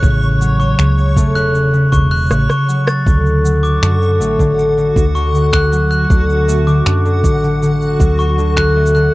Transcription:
0.00 0.74 A1 medium
0.00 0.77 C#3 medium
0.00 1.16 A3 loud
0.00 1.54 C#4 medium
0.00 3.08 C#5 medium
0.00 3.08 C#6 medium
0.00 kick loud
0.00 shaker soft
0.22 shaker soft
0.40 0.84 F#3 medium
0.40 shaker medium
0.60 0.78 C#6 medium
0.60 shaker soft
0.79 1.17 C#2 medium
0.79 1.34 C#3 medium
0.79 finger snap medium
0.79 shaker soft
0.98 shaker soft
1.17 1.88 E1 medium
1.17 4.20 A3 loud
1.17 kick medium
1.17 shaker medium
1.35 1.72 C#3 loud
1.35 1.54 F#6 loud
1.35 shaker soft
1.54 3.12 C#4 medium
1.54 shaker soft
1.73 1.91 C#3 medium
1.73 shaker soft
1.92 2.30 E1 medium
1.92 2.10 C#3 medium
1.92 2.10 C#6 medium
1.92 kick medium
1.92 shaker medium
2.11 2.29 C#3 medium
2.11 2.29 F#6 loud
2.11 shaker soft
2.15 shaker soft
2.17 shaker soft
2.19 shaker soft
2.22 shaker soft
2.24 shaker soft
2.26 shaker soft
2.29 2.46 A1 medium
2.29 3.11 C#3 medium
2.29 cross-stick medium
2.29 shaker soft
2.31 shaker soft
2.49 2.67 C#6 medium
2.49 cross-stick medium
2.49 shaker soft
2.68 3.11 F#3 medium
2.68 shaker medium
2.87 3.05 A6 medium
2.87 cross-stick medium
2.87 shaker soft
3.06 3.77 D2 medium
3.06 3.81 D3 medium
3.06 9.14 F#4 medium
3.06 9.14 F#5 medium
3.06 kick loud
3.06 shaker soft
3.26 shaker soft
3.44 3.87 F#3 medium
3.44 shaker medium
3.63 3.81 D6 medium
3.63 shaker soft
3.82 4.20 F#2 medium
3.82 4.38 D3 medium
3.82 finger snap medium
3.82 shaker soft
4.02 shaker soft
4.20 4.91 A1 medium
4.20 6.48 A3 medium
4.20 shaker medium
4.39 4.76 D3 medium
4.39 kick medium
4.39 shaker soft
4.58 6.86 D4 medium
4.58 shaker soft
4.77 4.95 D3 medium
4.77 shaker soft
4.96 6.05 D2 medium
4.96 5.14 D3 medium
4.96 kick loud
4.96 shaker medium
5.15 5.33 D3 medium
5.15 5.33 C#6 medium
5.15 shaker soft
5.34 6.09 D3 medium
5.34 shaker soft
5.53 5.71 F#6 medium
5.53 finger snap medium
5.53 kick medium
5.53 shaker soft
5.72 6.15 F#3 medium
5.72 shaker medium
5.91 6.09 F#6 medium
5.91 shaker soft
6.10 6.81 D2 medium
6.10 6.66 D3 medium
6.10 kick loud
6.10 shaker soft
6.30 shaker soft
6.48 8.76 A3 medium
6.48 shaker medium
6.67 7.04 D3 medium
6.67 6.85 D6 medium
6.67 shaker soft
6.86 7.24 F#2 medium
6.86 9.14 D4 medium
6.86 finger snap medium
6.86 shaker soft
7.05 7.23 D3 medium
7.05 shaker soft
7.24 7.95 A1 loud
7.24 7.42 D3 medium
7.24 kick loud
7.24 shaker medium
7.43 7.61 D3 medium
7.43 shaker soft
7.62 8.37 D3 medium
7.62 shaker soft
7.82 shaker soft
8.00 9.09 D2 medium
8.00 8.43 F#3 medium
8.00 kick loud
8.00 shaker medium
8.19 8.37 C#6 medium
8.19 shaker soft
8.38 8.94 D3 medium
8.38 shaker soft
8.57 8.75 F#6 medium
8.57 finger snap medium
8.57 kick medium
8.57 shaker soft
8.76 9.14 A3 loud
8.86 shaker medium
8.95 9.14 D3 medium
8.95 9.13 F#6 medium
8.95 shaker soft

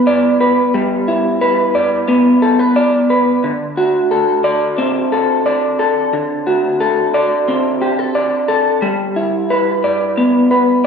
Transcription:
0.00 0.73 G3 medium
0.00 2.07 B3 medium
0.00 1.07 E4 medium
0.00 0.39 B4 medium
0.07 1.74 D5 medium
0.41 1.40 B4 medium
0.74 3.44 G3 medium
1.08 3.51 E4 medium
1.41 2.42 B4 medium
1.75 2.76 D5 medium
2.08 3.50 B3 medium
2.42 2.59 A4 medium
2.59 3.09 B4 soft
2.76 4.44 D5 medium
3.10 3.51 B4 medium
3.44 6.13 D3 medium
3.77 6.46 F#4 medium
4.11 5.11 A4 medium
4.44 5.45 D5 medium
4.78 7.47 C4 medium
5.12 5.78 A4 medium
5.46 7.14 D5 medium
5.79 6.79 A4 medium
6.13 9.19 D3 medium
6.47 8.90 F#4 medium
6.80 7.81 A4 medium
7.14 8.15 D5 medium
7.48 8.90 C4 medium
7.82 7.99 G4 medium
7.99 8.47 A4 soft
8.15 9.19 D5 medium
8.48 8.89 A4 medium
8.82 10.87 G3 medium
9.16 10.87 E4 medium
9.50 10.50 B4 medium
9.84 10.84 D5 medium
10.17 10.87 B3 medium
10.51 10.87 B4 medium

